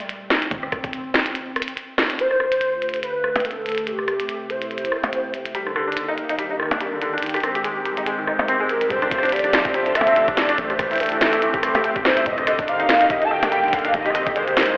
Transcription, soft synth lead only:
0.00 0.30 G3 medium
0.30 0.50 D#4 loud
0.51 1.73 C4 loud
2.19 2.99 C5 loud
3.03 3.46 B4 loud
3.45 3.88 A4 medium
3.87 4.51 G4 medium
4.50 5.34 C5 medium
8.70 8.92 A#4 medium
8.91 9.11 C5 loud
9.11 9.34 C5 loud
9.32 9.74 D5 loud
9.74 9.97 C5 medium
9.95 10.39 E5 loud
10.37 10.60 D5 loud
10.58 11.02 C5 loud
11.00 11.84 A4 loud
12.05 12.28 C5 loud
12.26 12.47 D#5 loud
12.47 12.57 D#5 loud
12.68 13.12 F5 loud
13.10 13.23 D#5 loud
13.24 13.33 A5 medium
13.31 13.75 G5 loud
13.73 13.96 F5 loud
13.94 14.36 D#5 loud
14.36 14.77 C5 loud

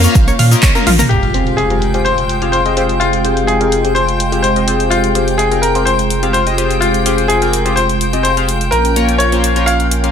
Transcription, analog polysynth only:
0.04 0.15 A#3 loud
0.04 0.15 C#4 medium
0.04 0.15 F4 medium
0.04 0.15 A#4 medium
0.04 0.15 C#5 loud
0.51 0.69 A#3 medium
0.51 0.69 C#4 medium
0.51 0.69 F4 medium
0.51 0.69 A#4 medium
0.51 0.69 D#5 medium
0.75 0.86 A#3 medium
0.75 0.86 C#4 medium
0.75 0.86 F4 medium
0.75 0.86 A#4 medium
0.75 0.86 F5 medium
1.34 1.68 C4 medium
1.34 1.68 F4 medium
1.34 1.68 G4 medium
1.34 1.68 G#4 medium
1.34 1.68 C5 loud
1.70 1.91 C4 medium
1.70 1.91 F4 medium
1.70 1.91 G4 medium
1.70 1.91 G#4 medium
1.70 1.91 A#4 medium
1.94 2.05 C4 medium
1.94 2.05 F4 medium
1.94 2.05 G4 medium
1.94 2.05 G#4 medium
1.94 2.05 C5 loud
2.42 2.60 C4 medium
2.42 2.60 F4 medium
2.42 2.60 G4 medium
2.42 2.60 G#4 medium
2.42 2.60 F5 medium
2.66 2.74 C4 medium
2.66 2.74 F4 medium
2.66 2.74 G4 medium
2.66 2.74 G#4 medium
2.66 2.74 D#5 medium
2.77 3.22 C4 medium
2.77 3.22 F4 medium
2.77 3.22 G4 medium
2.77 3.22 G#4 medium
2.77 3.22 C5 loud
3.25 3.58 C4 medium
3.25 3.58 F4 medium
3.25 3.58 G4 medium
3.25 3.58 G#4 medium
3.25 3.58 C5 loud
3.61 3.82 C4 medium
3.61 3.82 F4 medium
3.61 3.82 G4 medium
3.61 3.82 G#4 medium
3.61 3.82 A#4 medium
3.85 3.96 C4 medium
3.85 3.95 F4 medium
3.85 3.96 G4 medium
3.85 3.95 G#4 medium
3.85 3.95 C5 loud
4.32 4.50 C4 medium
4.32 4.50 F4 medium
4.32 4.50 G4 medium
4.32 4.50 G#4 medium
4.32 4.50 F5 medium
4.56 4.65 C4 medium
4.56 4.65 F4 medium
4.56 4.65 G4 medium
4.56 4.65 G#4 medium
4.56 4.65 D#5 medium
4.68 5.13 C4 medium
4.68 5.13 F4 medium
4.68 5.13 G4 medium
4.68 5.13 G#4 medium
4.68 5.13 C5 medium
5.15 5.48 C4 medium
5.15 5.48 F4 medium
5.15 5.48 G4 medium
5.15 5.48 G#4 medium
5.15 5.48 C5 loud
5.51 5.72 C4 medium
5.51 5.72 F4 medium
5.51 5.72 G4 medium
5.51 5.72 G#4 medium
5.51 5.72 A#4 medium
5.75 5.86 C4 medium
5.75 5.86 F4 medium
5.75 5.86 G4 medium
5.75 5.86 G#4 medium
5.75 5.86 C5 loud
6.23 6.41 C4 medium
6.23 6.41 F4 medium
6.23 6.41 G4 medium
6.23 6.41 G#4 medium
6.23 6.41 F5 medium
6.47 6.55 C4 medium
6.47 6.55 F4 medium
6.47 6.55 G4 medium
6.47 6.55 G#4 medium
6.47 6.55 D#5 medium
6.58 7.03 C4 medium
6.58 7.03 F4 medium
6.58 7.03 G4 medium
6.58 7.03 G#4 medium
6.58 7.03 C5 loud
7.06 7.39 C4 medium
7.06 7.39 F4 medium
7.06 7.39 G4 medium
7.06 7.39 G#4 medium
7.06 7.39 C5 loud
7.42 7.63 C4 medium
7.42 7.63 F4 medium
7.42 7.63 G4 medium
7.42 7.63 G#4 medium
7.42 7.63 A#4 medium
7.65 7.76 C4 medium
7.65 7.76 F4 medium
7.65 7.76 G4 medium
7.65 7.76 G#4 medium
7.65 7.76 C5 loud
8.13 8.31 C4 medium
8.13 8.31 F4 medium
8.13 8.31 G4 medium
8.13 8.31 G#4 medium
8.13 8.31 D#5 medium
8.37 8.48 C4 medium
8.37 8.48 F4 medium
8.37 8.48 G4 medium
8.37 8.48 G#4 medium
8.37 8.48 F5 medium
8.96 9.29 A#3 medium
8.96 9.29 C#4 medium
8.96 9.29 F4 medium
8.96 9.29 A#4 medium
8.96 9.30 C#5 loud
9.32 9.53 A#3 medium
9.32 9.53 C#4 medium
9.32 9.53 F4 medium
9.32 9.53 A#4 medium
9.32 9.53 C5 medium
9.56 9.67 A#3 medium
9.56 9.67 C#4 medium
9.56 9.67 F4 medium
9.56 9.67 A#4 medium
9.56 9.67 C#5 loud
10.04 10.12 A#3 medium
10.04 10.12 C#4 medium
10.04 10.12 F4 medium
10.04 10.12 A#4 medium
10.04 10.12 F5 medium

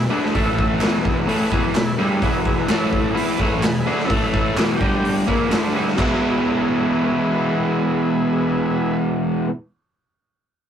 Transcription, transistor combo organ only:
0.09 0.28 G#4 medium
0.09 0.29 B4 medium
0.09 0.28 E5 loud
0.33 0.52 E4 loud
0.33 0.53 A4 loud
0.33 0.53 E5 loud
0.55 0.75 E4 loud
0.55 0.75 A4 loud
0.55 0.75 E5 loud
0.78 0.99 G#4 medium
0.78 0.98 B4 medium
0.78 0.98 E5 loud
0.99 1.21 G#4 medium
0.99 1.20 B4 medium
0.99 1.21 E5 medium
1.24 1.45 G#4 medium
1.24 1.45 B4 medium
1.24 1.46 E5 loud
1.49 1.69 G#4 medium
1.49 1.69 B4 medium
1.49 1.69 E5 loud
1.75 1.93 G#4 loud
1.75 1.94 B4 loud
1.75 1.94 E5 loud
2.00 2.18 G#4 loud
2.00 2.18 B4 medium
2.00 2.17 E5 loud
2.22 2.40 G#4 loud
2.22 2.41 B4 loud
2.22 2.40 E5 loud
2.46 2.64 G#4 loud
2.46 2.64 B4 loud
2.46 2.64 E5 loud
2.67 2.86 E4 medium
2.67 2.86 A4 medium
2.67 2.87 E5 loud
2.89 3.09 E4 medium
2.89 3.09 A4 medium
2.89 3.09 E5 loud
3.10 3.31 G#4 loud
3.10 3.32 B4 medium
3.10 3.33 E5 loud
3.35 3.55 G#4 medium
3.35 3.55 B4 medium
3.35 3.56 E5 loud
3.59 3.78 G#4 loud
3.59 3.79 B4 loud
3.59 3.79 F#5 loud
3.79 4.01 G#4 loud
3.79 4.02 B4 medium
3.79 4.01 E5 loud
4.05 4.26 E4 loud
4.05 4.26 A4 loud
4.05 4.26 E5 loud
4.32 4.51 E4 loud
4.32 4.51 A4 loud
4.32 4.52 E5 loud
4.52 4.73 G#4 medium
4.52 4.73 B4 medium
4.52 4.74 E5 loud
4.76 5.16 G4 medium
4.76 5.16 D5 medium
4.76 5.17 G5 loud
5.27 5.65 G#4 loud
5.27 5.65 B4 medium
5.27 5.65 E5 loud
5.73 5.92 G#4 medium
5.73 5.92 B4 medium
5.73 5.93 E5 loud
5.96 8.97 G#4 medium
5.96 8.97 B4 medium
5.96 8.95 E5 loud

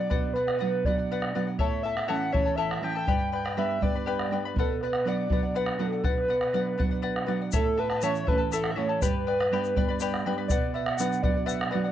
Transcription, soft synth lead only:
0.00 0.33 D5 medium
0.34 0.57 B4 medium
0.61 0.87 B4 loud
0.85 1.41 D5 medium
1.60 1.83 C#5 loud
1.83 2.07 E5 loud
2.08 2.32 F#5 loud
2.33 2.57 C#5 loud
2.56 2.82 E5 medium
2.84 3.30 G5 loud
3.35 3.57 G5 loud
3.58 3.81 E5 loud
3.83 4.34 D5 loud
4.59 4.81 A4 loud
4.83 5.05 B4 medium
5.08 5.58 D5 loud
5.57 5.83 B4 medium
5.82 6.04 A4 medium
6.05 7.24 B4 loud
7.56 7.81 A4 loud
7.79 8.03 B4 medium
8.03 8.26 C#5 loud
8.28 8.39 B4 medium
8.53 8.70 A4 medium
8.71 8.78 E5 medium
8.77 9.01 C#5 loud
9.02 9.96 B4 loud
10.48 10.71 D5 loud
10.75 10.97 E5 medium
10.97 11.21 F#5 medium
11.23 11.45 D5 medium
11.46 11.63 E5 medium
11.63 11.72 E5 medium
11.71 11.92 D5 loud

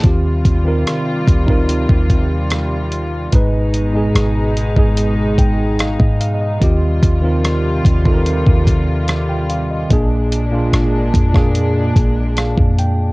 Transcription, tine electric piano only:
0.03 0.43 D#3 medium
0.03 0.43 C4 medium
0.03 0.44 F4 medium
0.03 0.44 G4 medium
0.64 1.17 D#3 medium
0.64 1.18 C4 medium
0.64 1.19 F4 medium
0.64 1.19 A#4 medium
1.46 2.52 C4 medium
1.46 2.52 D#4 medium
1.46 2.53 F4 medium
1.46 2.54 A#4 medium
3.32 3.71 G#2 medium
3.32 3.72 G#3 medium
3.32 3.73 D#4 medium
3.32 3.73 B4 medium
3.93 4.46 G#2 medium
3.93 4.47 G#3 medium
3.93 4.47 D#4 medium
3.93 4.48 G#4 medium
4.75 5.81 G#2 medium
4.75 5.81 G#3 medium
4.75 5.82 D#4 medium
4.75 5.82 G#4 medium
5.39 5.77 G5 medium
5.80 6.20 F5 medium
6.00 6.20 D#5 medium
6.21 6.40 F5 medium
6.34 6.40 D#5 medium
6.41 6.80 D#5 medium
6.60 7.00 D#3 medium
6.60 7.01 C4 medium
6.60 7.01 F4 medium
6.60 7.02 G4 medium
7.21 7.75 D#3 medium
7.21 7.75 C4 medium
7.21 7.76 F4 medium
7.21 7.77 A#4 medium
8.04 9.09 D#3 medium
8.04 9.10 C4 medium
8.04 9.11 F4 medium
8.04 8.13 A4 medium
8.14 9.14 A#4 medium
9.29 9.48 G5 medium
9.49 9.69 F5 medium
9.70 10.09 D#5 medium
9.89 10.29 A#2 medium
9.89 10.30 A#3 medium
9.89 10.30 D4 medium
9.89 10.31 G#4 medium
10.51 11.04 A#2 medium
10.51 11.04 A#3 medium
10.51 11.05 D4 medium
10.51 11.06 F4 medium
11.33 12.38 A#2 medium
11.33 12.39 A#3 medium
11.33 12.40 D4 medium
11.33 12.40 G#4 medium
12.38 12.76 F5 medium
12.79 13.13 G5 medium

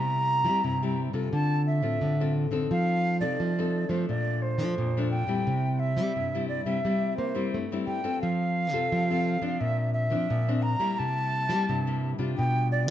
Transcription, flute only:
0.00 1.06 A#5 loud
1.33 1.65 A5 loud
1.67 2.32 E5 medium
2.71 3.19 F5 medium
3.20 3.91 D5 medium
3.89 4.08 C5 medium
4.09 4.44 D5 medium
4.42 5.10 C5 medium
5.11 5.81 G5 medium
5.80 6.48 E5 medium
6.48 6.64 D5 medium
6.65 7.14 E5 medium
7.17 7.57 C5 medium
7.86 8.19 G5 medium
8.22 9.62 F5 loud
9.60 9.93 E5 loud
9.93 10.64 E5 loud
10.63 11.00 A#5 loud
10.99 12.10 A5 loud
12.38 12.70 G5 loud
12.72 12.90 D5 medium

